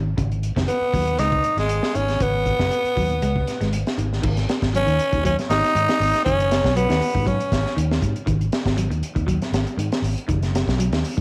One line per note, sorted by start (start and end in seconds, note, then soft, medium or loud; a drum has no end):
0.00 0.14 G#1 medium
0.17 0.51 G#1 loud
0.17 0.33 C#3 medium
0.17 kick medium
0.17 closed hi-hat medium
0.32 closed hi-hat soft
0.43 closed hi-hat soft
0.56 0.67 F#1 medium
0.56 0.71 D#3 medium
0.56 kick medium
0.56 snare medium
0.56 closed hi-hat soft
0.68 1.21 B3 medium
0.68 closed hi-hat medium
0.81 muted fingered electric bass stroke soft
0.94 1.16 D#2 medium
0.94 1.09 F#3 medium
0.94 kick medium
0.94 open hi-hat medium
1.07 closed hi-hat soft
1.18 1.41 C#2 medium
1.18 1.34 G#3 medium
1.18 1.58 D#4 loud
1.18 snare soft
1.18 closed hi-hat medium
1.32 kick medium
1.32 closed hi-hat soft
1.44 closed hi-hat soft
1.57 1.79 G#1 medium
1.57 1.97 G#3 medium
1.57 muted clean electric guitar stroke medium
1.57 snare soft
1.57 closed hi-hat soft
1.69 closed hi-hat medium
1.83 snare medium
1.95 2.17 G#1 medium
1.95 2.10 D#3 medium
1.95 2.23 C#4 medium
1.95 closed hi-hat soft
2.08 snare soft
2.08 closed hi-hat soft
2.20 2.54 G#1 medium
2.20 2.36 C#3 medium
2.20 3.73 B3 medium
2.20 kick medium
2.20 closed hi-hat medium
2.46 kick medium
2.46 closed hi-hat soft
2.59 2.70 F#1 medium
2.59 muted clean electric guitar stroke medium
2.59 kick medium
2.59 snare medium
2.71 closed hi-hat medium
2.84 muted fingered electric bass stroke soft
2.84 closed hi-hat soft
2.96 3.19 D#2 medium
2.96 3.11 F#3 medium
2.96 kick medium
2.96 open hi-hat medium
3.10 closed hi-hat soft
3.22 3.44 C#2 medium
3.22 3.37 G#3 medium
3.22 closed hi-hat medium
3.36 kick medium
3.47 snare soft
3.47 closed hi-hat soft
3.61 3.83 G#1 medium
3.61 3.76 G#3 medium
3.61 snare soft
3.61 closed hi-hat soft
3.73 closed hi-hat medium
3.87 snare medium
3.87 closed hi-hat soft
3.98 4.20 G#1 medium
3.98 4.13 D#3 medium
3.98 closed hi-hat soft
4.13 snare soft
4.22 4.45 G#1 loud
4.22 4.38 D#3 medium
4.22 kick medium
4.22 crash medium
4.37 snare soft
4.37 closed hi-hat soft
4.49 snare medium
4.49 closed hi-hat soft
4.62 4.84 G#1 medium
4.62 kick medium
4.62 snare medium
4.62 closed hi-hat soft
4.74 4.82 F#3 medium
4.74 5.22 C#4 loud
4.74 closed hi-hat medium
4.86 4.97 D#2 loud
4.86 5.01 D#3 medium
4.86 closed hi-hat soft
4.99 muted fingered electric bass stroke soft
4.99 closed hi-hat medium
5.12 5.34 D#2 medium
5.12 5.19 D#3 medium
5.12 kick medium
5.12 closed hi-hat soft
5.24 5.39 F#3 medium
5.24 5.36 C#4 medium
5.24 kick medium
5.24 closed hi-hat medium
5.39 snare soft
5.39 closed hi-hat soft
5.50 5.61 G#1 medium
5.50 6.21 D#4 loud
5.50 snare medium
5.50 closed hi-hat medium
5.64 snare soft
5.64 closed hi-hat soft
5.75 5.86 G#2 medium
5.75 5.90 D#3 medium
5.75 closed hi-hat medium
5.89 snare medium
5.89 closed hi-hat soft
6.00 6.11 G#1 loud
6.00 snare soft
6.00 open hi-hat medium
6.14 snare soft
6.14 closed hi-hat soft
6.25 6.59 F#1 loud
6.25 6.41 D#3 medium
6.25 6.72 C#4 loud
6.25 kick medium
6.25 closed hi-hat medium
6.40 closed hi-hat soft
6.51 snare medium
6.51 closed hi-hat medium
6.64 6.86 B1 medium
6.64 kick medium
6.64 snare medium
6.64 closed hi-hat soft
6.76 6.84 F#3 medium
6.76 7.29 B3 medium
6.76 closed hi-hat medium
6.89 7.00 D#2 medium
6.89 7.04 D#3 medium
6.89 snare medium
6.89 closed hi-hat soft
7.02 open hi-hat medium
7.15 7.36 G#2 medium
7.15 7.21 D#3 medium
7.15 kick medium
7.26 7.41 F#3 medium
7.26 7.77 C#4 medium
7.26 kick medium
7.26 closed hi-hat medium
7.40 closed hi-hat soft
7.52 7.63 G#1 medium
7.52 kick medium
7.52 snare medium
7.52 closed hi-hat medium
7.66 snare soft
7.77 7.99 D#2 medium
7.77 7.92 D#3 medium
7.77 closed hi-hat medium
7.91 snare medium
8.02 8.14 G#2 medium
8.02 kick medium
8.02 closed hi-hat medium
8.16 closed hi-hat soft
8.26 8.49 G#1 medium
8.26 8.41 D#3 medium
8.26 kick medium
8.26 closed hi-hat medium
8.41 closed hi-hat soft
8.52 snare medium
8.52 closed hi-hat medium
8.66 8.87 G#1 medium
8.66 kick medium
8.66 snare medium
8.66 closed hi-hat soft
8.77 8.85 F#3 medium
8.77 closed hi-hat medium
8.90 9.01 D#2 medium
8.90 9.06 D#3 medium
8.90 closed hi-hat soft
9.02 muted fingered electric bass stroke soft
9.02 closed hi-hat soft
9.15 9.38 D#2 medium
9.15 9.22 D#3 medium
9.15 kick medium
9.15 closed hi-hat soft
9.27 9.42 F#3 medium
9.27 kick medium
9.27 closed hi-hat medium
9.42 snare soft
9.42 closed hi-hat soft
9.52 9.64 G#1 medium
9.52 snare medium
9.52 closed hi-hat medium
9.67 closed hi-hat soft
9.77 9.89 G#2 medium
9.77 9.93 D#3 medium
9.77 closed hi-hat medium
9.92 snare medium
9.92 closed hi-hat soft
10.02 10.14 G#1 medium
10.02 open hi-hat medium
10.18 closed hi-hat soft
10.28 10.62 F#1 loud
10.28 10.43 D#3 medium
10.28 kick medium
10.28 closed hi-hat medium
10.43 snare soft
10.43 closed hi-hat soft
10.55 snare medium
10.55 closed hi-hat medium
10.68 10.89 B1 loud
10.68 kick medium
10.68 snare medium
10.68 closed hi-hat soft
10.79 10.87 F#3 medium
10.79 closed hi-hat medium
10.92 11.02 D#2 medium
10.92 11.08 D#3 medium
10.92 snare medium
10.92 closed hi-hat soft
11.04 open hi-hat medium
11.17 11.21 G#2 loud
11.17 11.21 D#3 medium
11.17 kick medium